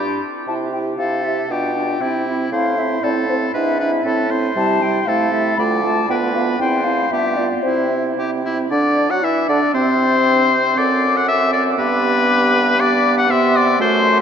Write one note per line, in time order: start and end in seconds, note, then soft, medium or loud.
0.00 0.21 G2 medium
0.00 0.21 D4 soft
0.00 0.21 G4 soft
0.00 0.21 G4 medium
0.00 0.21 B5 soft
0.47 0.93 C3 soft
0.47 0.72 E4 soft
0.47 0.73 G4 soft
0.47 0.54 A5 medium
0.72 0.98 E4 soft
0.72 0.99 G4 soft
0.72 0.79 G5 soft
0.98 1.44 C3 soft
0.98 1.24 E4 soft
0.98 1.24 G4 soft
0.98 1.53 A4 soft
0.98 1.26 F5 medium
1.24 1.49 E4 soft
1.24 1.50 G4 soft
1.24 1.50 E5 medium
1.50 1.95 B2 soft
1.50 1.75 D4 soft
1.50 1.76 F4 soft
1.50 2.03 G4 soft
1.50 2.25 G5 medium
1.75 2.00 D4 soft
1.75 2.01 F4 soft
2.01 2.46 C3 soft
2.01 2.26 C4 soft
2.01 2.52 E4 soft
2.01 2.27 E4 soft
2.26 2.51 C4 soft
2.26 2.52 E4 soft
2.52 2.97 A2 medium
2.52 2.77 C4 soft
2.52 2.78 E4 soft
2.52 3.05 C5 medium
2.52 2.80 F5 medium
2.78 3.02 C4 soft
2.78 3.03 E4 soft
2.78 3.03 E5 medium
3.03 3.49 A2 soft
3.03 3.28 C4 soft
3.03 3.29 E4 soft
3.03 3.54 A4 medium
3.03 3.09 D5 medium
3.29 3.54 C4 soft
3.29 3.54 E4 soft
3.29 3.35 C5 medium
3.54 3.99 G#2 medium
3.54 3.79 D4 soft
3.54 3.80 E4 soft
3.54 3.79 B4 medium
3.54 4.29 E5 medium
3.80 4.04 D4 soft
3.80 4.05 E4 soft
3.80 3.91 B4 medium
4.04 4.50 A2 medium
4.04 4.29 C4 soft
4.04 4.30 E4 soft
4.04 4.32 A4 medium
4.30 4.55 C4 soft
4.30 4.56 E4 soft
4.30 5.10 C5 medium
4.55 5.01 C3 medium
4.55 4.81 G3 medium
4.55 4.81 E4 medium
4.55 4.84 A5 medium
4.81 5.06 G3 soft
4.81 5.07 E4 soft
4.81 5.07 G5 medium
5.06 5.52 C3 medium
5.06 5.32 A3 soft
5.06 5.32 E4 soft
5.06 5.59 A4 medium
5.06 5.33 F5 medium
5.32 5.57 A3 soft
5.32 5.58 E4 soft
5.32 5.56 E5 medium
5.57 6.04 D2 medium
5.57 5.83 A3 soft
5.57 5.84 F4 medium
5.57 6.09 D5 medium
5.57 5.63 B5 medium
5.83 6.08 A3 soft
5.83 6.09 F4 soft
5.83 6.09 A5 medium
6.09 6.54 D2 medium
6.09 6.34 B3 soft
6.09 6.34 F4 medium
6.09 6.60 B4 medium
6.09 6.15 G5 medium
6.34 6.59 B3 soft
6.34 6.60 F4 soft
6.34 6.41 F5 medium
6.59 7.06 E2 medium
6.59 6.84 C4 soft
6.59 6.85 E4 soft
6.59 7.12 C5 medium
6.59 6.86 G5 medium
6.84 7.11 C4 soft
6.84 7.11 E4 soft
6.84 7.13 F5 medium
7.11 7.51 G2 soft
7.11 7.37 B3 soft
7.11 7.37 F4 soft
7.11 7.46 G4 medium
7.11 7.38 E5 medium
7.37 7.63 B3 soft
7.37 7.64 F4 soft
7.37 7.65 D5 medium
7.63 8.12 C3 soft
7.63 7.90 C4 soft
7.63 7.91 E4 soft
7.63 8.10 E4 soft
7.63 8.18 C5 medium
7.91 8.17 C4 soft
7.91 8.18 E4 soft
8.18 8.65 C3 soft
8.18 8.44 C4 soft
8.18 8.45 E4 soft
8.18 8.31 G4 medium
8.45 8.70 C4 soft
8.45 8.71 E4 soft
8.45 8.57 E4 soft
8.71 9.12 D3 medium
8.71 9.12 D4 medium
8.71 9.08 D5 medium
8.71 9.12 D5 medium
9.10 9.25 F#3 medium
9.10 9.24 F#4 medium
9.10 9.22 F#4 medium
9.10 9.26 F#5 medium
9.23 9.48 E3 medium
9.23 9.48 E4 medium
9.23 9.50 E4 medium
9.23 9.49 E5 medium
9.23 9.51 E5 medium
9.48 9.60 D3 medium
9.48 9.74 D4 medium
9.48 9.76 D4 medium
9.48 9.74 D5 medium
9.74 10.74 C3 medium
9.74 10.59 C4 medium
9.74 10.79 C5 medium
9.74 10.75 C5 medium
10.76 11.75 F#2 medium
10.76 11.74 C4 soft
10.76 11.75 A4 medium
10.76 11.18 D5 medium
10.76 11.75 D6 medium
11.17 11.28 F#5 medium
11.28 11.52 E5 medium
11.53 11.64 D5 medium
11.78 13.32 G2 medium
11.78 12.77 B3 medium
11.78 12.78 G4 medium
11.78 12.82 B4 medium
11.78 12.56 D6 medium
12.79 13.29 B3 medium
12.79 13.29 G4 medium
12.79 13.17 D5 loud
12.79 13.29 D6 medium
13.18 13.32 F#5 medium
13.29 13.82 C3 medium
13.29 13.79 B3 medium
13.29 13.82 G4 medium
13.29 13.58 E5 medium
13.29 13.80 C6 medium
13.56 13.81 D5 loud
13.80 14.21 F#2 medium
13.80 14.21 A3 medium
13.80 14.21 F#4 medium
13.80 14.19 C5 loud
13.80 14.21 C6 medium